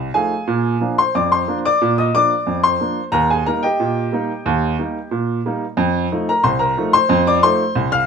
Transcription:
0.14 F3 A3 D#4 G#4 F5 G#5
0.47 A#2
0.80 F3 A#3 D4
0.98 C5 C6
1.15 F2 D5 D6
1.32 C5 C6
1.48 F3 A#3 D4
1.65 D5 D6
1.82 A#2
1.98 D#5 D#6
2.14 F3 A#3 D4 D5 D6
2.47 F2
2.63 C5 C6
2.80 F3 A#3 D4
3.12 D#2 A#4 A#5
3.30 G#4 G#5
3.46 G3 A#3 D#4 A#4 A#5
3.63 G4 D#5 G5
3.80 A#2
4.12 G3 A#3 D#4
4.46 D#2
4.79 G3 A#3 D#4
5.11 A#2
5.46 G3 A#3 D#4
5.77 F2
6.12 F3 A3 D#4
6.29 A#4 A#5
6.44 C2 C5 C6
6.59 A#4 A#5
6.77 F3 A3 D#4
6.93 C5 C6
7.09 F2
7.27 D5 D6
7.43 F3 A3 D#4 C5 C6
7.75 C2
7.92 F5 F6

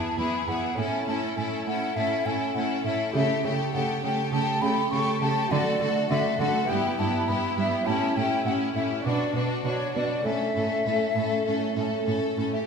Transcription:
Already playing: E2 G#3 B3 E4 G#4 A5
0.18 E2 B3 E4 G#4 B5
0.48 E2 B3 E4 G#4 F#5
0.73 A3 C#4 E4
0.78 A2 C#4 E4 A4 G#5
1.07 A2 C#4 E4 A4 A5
1.37 A2 C#4 E4 A4 G#5
1.67 A2 C#4 E4 A4 F#5
1.96 A2 C#4 E4 A4 E5
2.26 A2 C#4 E4 A4 G#5
2.55 A2 C#4 E4 A4 F#5
2.84 A2 C#4 E4 A4 E5
3.10 A3 E4 G4
3.15 C#3 G4 A4 E5
3.43 C#3 A3 G4 A4
3.74 C#3 A3 G4 A4 F#5
4.03 C#3 A3 G4 A4 G5
4.32 C#3 A3 G4 A4 A5
4.62 C#3 A3 G4 A4 B5
4.91 C#3 A3 G4 A4 C#6
5.21 C#3 A3 G4 A4 A5
5.47 A3 F#4
5.51 D3 A3 F#4 A4 D5
5.80 D3 A3 F#4 A4
6.10 D3 A3 F#4 A4 E5
6.39 D3 A3 F#4 A4 F#5
6.64 B3 E4 G4
6.69 G2 B3 E4 G4 G5
6.98 G2 B3 E4 G4 A5
7.27 G2 B3 E4 G4 B5
7.56 G2 B3 E4 G4 E5
7.83 A2 C#4 E4 G4 A5
7.87 A2 E4
8.16 A2 C#4 E4 G4 G5
8.45 A2 C#4 E4 G4 F#5
8.75 A2 C#4 E4 G4 E5
9.01 D4 F#4
9.05 B2 D4 F#4 D5
9.34 B2 D4 F#4 B4
9.64 B2 D4 F#4 C#5
9.94 B2 D4 F#4 D5
10.21 A2 A3 C#4 A4
10.25 A2 E5
10.54 A2 A3 C#4 A4
10.84 A2 A3 C#4 A4
11.15 A2 A3 C#4 A4
11.45 A2 A3 C#4 A4
11.76 A2 A3 C#4 A4
12.06 A2 A3 C#4 A4
12.35 A2 A3 C#4 A4
12.53 G4 E5

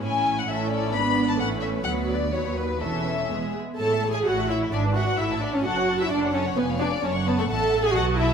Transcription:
0.03 A1 A2 C#4 E4 G#5
0.38 F#5
0.48 A1 A2 C#4 E4 A4 E5
0.71 D5
0.93 G#1 G#2 B3 D4 B4 B5
1.29 A5
1.39 A1 A2 A3 C#4 F#5
1.61 E5
1.84 D2 F#3 B3 B4 F#5
2.08 D5
2.32 D#2 F#3 B3 B4 C#5
2.56 B4
2.81 E1 E2 E3 C#4 A4 E5
3.30 E1 E2 G#3 B3 G#4
3.78 A1 A2 E4 A4 C#5 A5
3.92 A4 E5
4.03 E4 C#5
4.13 G#4 A4 E5 G#5
4.25 A1 A2 E4 F#4 C#5 F#5
4.38 A4 E5
4.50 E4 C#5 E5
4.63 A4 E5
4.73 G#1 G#2 D4 G#4 D5 E5
4.84 B4 D5
4.96 F#4 G#4 E5 F#5
5.07 B4 D5
5.18 A1 A2 E4 A4 E5
5.31 C#5 A5
5.42 D4 A4 D5 E5
5.53 C#4 C#5 A5
5.64 F#1 F#2 F#4 A4 F#5 A5
5.77 C#5 F#5
5.89 A4 A5
6.00 E4 C#5 E5 F#5
6.11 F#1 F#2 D4 A4 D5 A5
6.24 C#5 F#5
6.33 C#4 A4 C#5 A5
6.46 C#5 F#5
6.57 F1 F2 B3 B4 G#5
6.70 C#5 F5
6.80 D4 B4 D5 G#5
6.91 C#5 F5
7.03 F#1 F#2 C#4 C#5 A5
7.14 F#5 C#6
7.26 B3 B4 C#5 A5
7.38 A3 A4 F#5 C#6
7.49 A1 A2 A4 E5 F#5 A5
7.84 G#4 G#5
7.94 B1 B2 F#4 D#5 F#5 A5
8.17 E4 E5

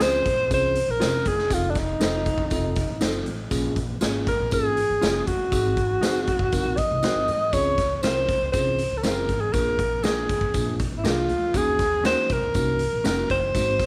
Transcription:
Already playing: C#2
0.00 C4 C#4 F4 G#4 C5, snare, closed hi-hat, tambourine
0.25 A#1, kick, closed hi-hat
0.50 C2 C4 C#4 F4 G#4 C5, kick, closed hi-hat, tambourine
0.75 closed hi-hat
0.88 A#1 A#4
0.99 F1 C4 C#4 F4 G#4 A#4 C5, snare, closed hi-hat, tambourine
1.25 F#1 G#4, kick, closed hi-hat
1.39 snare
1.50 F1 C4 D#4 F4 A4, kick, closed hi-hat, tambourine
1.70 D4
1.75 D#4, kick, snare, closed hi-hat
2.00 F1 C4 D#4 F4 A4 C5, snare, closed hi-hat, tambourine
2.26 kick, closed hi-hat
2.38 F#1, kick
2.50 F1 C4 D#4 F4 A4, kick, closed hi-hat, tambourine
2.76 kick, closed hi-hat
2.89 A1
3.01 F#1 C4 D#4 F4 A4 C5, snare, closed hi-hat, tambourine
3.26 A1, closed hi-hat
3.51 A#1 A#3 C#4 F4 G#4, kick, closed hi-hat, tambourine
3.76 kick, closed hi-hat
4.01 G#1 A#3 C#4 F4 G#4 C#5, snare, closed hi-hat, tambourine
4.27 A#4, kick, closed hi-hat
4.40 A#1
4.51 G#1 A#3 C#4 F4 G#4, kick, closed hi-hat, tambourine
4.77 closed hi-hat
4.90 G#1
5.01 F1 A#3 C#4 F4 G#4 C#5, snare, closed hi-hat, tambourine
5.22 G#4
5.26 F#1 F#4, kick, closed hi-hat
5.52 G#1 C4 D#4 F#4 G#4, kick, closed hi-hat, tambourine
5.77 kick, closed hi-hat
6.01 F#1 C4 D#4 F#4 G#4 C5, snare, closed hi-hat, tambourine
6.27 kick, closed hi-hat
6.39 G#1, kick
6.52 F#1 C4 D#4 F#4 A#4, kick, closed hi-hat, tambourine
6.65 A#1
6.77 D#5, kick, closed hi-hat
6.91 C2
7.03 C4 D#4 F#4 A#4 C5, muted upright bass stroke, snare, closed hi-hat, tambourine
7.16 G#1
7.28 G#2, closed hi-hat
7.53 C#2 C4 C#4 F4 G#4 C#5, kick, closed hi-hat, tambourine
7.78 kick, snare, closed hi-hat
7.97 C#5
8.02 C2 C4 C#4 F4 A#4 C5, snare, closed hi-hat, tambourine
8.28 kick, closed hi-hat
8.41 C#2
8.52 C2 C4 C#4 F4 G#4 C5, kick, closed hi-hat, tambourine
8.78 closed hi-hat
8.91 C#2
8.97 A4
9.02 F#1 C4 C#4 F4 G#4 A#4 C5, snare, closed hi-hat, tambourine
9.29 G#1, kick, closed hi-hat
9.41 G#4
9.53 A#1 A#3 D4 F4 G#4 A#4, kick, closed hi-hat, tambourine
9.79 kick, closed hi-hat
10.04 A#3 D4 F4 G#4 A#4, snare, closed hi-hat, tambourine
10.29 G#1, kick, closed hi-hat
10.41 kick
10.54 A#1 A#3 D4 F4 G#4, kick, closed hi-hat, tambourine
10.79 kick, closed hi-hat
10.92 G#1
10.98 E4
11.04 C2 A#3 D4 F4 G#4 A#4, snare, closed hi-hat, tambourine
11.29 D2, closed hi-hat
11.54 D#2 A#3 C#4 D#4 F#4 G#4, kick, closed hi-hat, tambourine
11.79 kick, snare, closed hi-hat
12.04 A#3 C#4 D#4 F#4 A#4 C5, snare, closed hi-hat, tambourine
12.29 C2 A#4, kick, closed hi-hat
12.43 C#2
12.54 C2 A#3 C#4 D#4 F#4, kick, closed hi-hat, tambourine
12.79 closed hi-hat
12.93 A#1
13.04 F1 A#3 C#4 D#4 F#4 A#4, snare, closed hi-hat, tambourine
13.30 F#1 C5, kick, closed hi-hat
13.55 G#1 G#3 C4 D#4 F#4, kick, closed hi-hat, tambourine
13.80 kick, snare, closed hi-hat

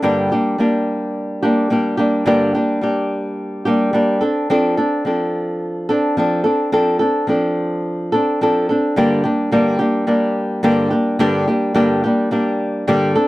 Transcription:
0.02 G2 D3 G3 A#3 D4 G4
0.32 G3 A#3 D4 G4
0.58 G3 A#3 D4 G4
1.43 G3 A#3 D4 G4
1.70 G3 A#3 D4 G4
1.97 G3 A#3 D4 G4
2.26 G2 D3 G3 A#3 D4 G4
2.55 G3 A#3 D4 G4
2.81 G3 A#3 D4 G4
3.65 G3 A#3 D4 G4
3.93 G3 A#3 D4 G4
4.21 C4 D4 A4
4.50 F3 C4 D4 A4
4.77 C4 D4 A4
5.05 F3 C4 D4 A4
5.89 C4 D4 A4
6.17 F3 C4 D4 A4
6.44 C4 D4 A4
6.72 F3 C4 D4 A4
6.99 C4 D4 A4
7.27 F3 C4 D4 A4
8.12 C4 D4 A4
8.41 F3 C4 D4 A4
8.69 C4 D4 A4
8.96 G2 D3 G3 A#3 D4 G4
9.24 G3 A#3 D4 G4
9.52 G2 D3 G3 A#3 D4 G4
9.79 G3 A#3 D4 G4
10.07 G3 A#3 D4 G4
10.63 G2 D3 G3 A#3 D4 G4
10.91 G3 A#3 D4 G4
11.19 G2 D3 G3 A#3 D4 G4
11.48 G3 A#3 D4 G4
11.74 G2 D3 G3 A#3 D4 G4
12.04 G3 A#3 D4 G4
12.31 G3 A#3 D4 G4
12.87 G2 D3 G3 A#3 D4 G4
13.15 C4 D4 A4

